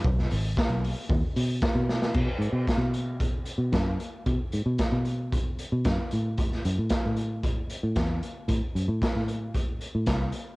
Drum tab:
CC |----------------|x---------------|----------------|----------------|
HH |--o---o---o-----|--x-x-x-x-x-x-x-|x-x-x-x-x-x-x-x-|x-x-x-x-x-x-x-x-|
SD |-o--o-------o-oo|----o-------o---|----o-------o---|-o--o-------o---|
BD |o---o---o---o---|o---o---o---o---|o---o---o---o---|o---o---o---o---|

CC |----------------|
HH |x-x-x-x-x-x-x-x-|
SD |----oo------o---|
BD |o---o---o---o---|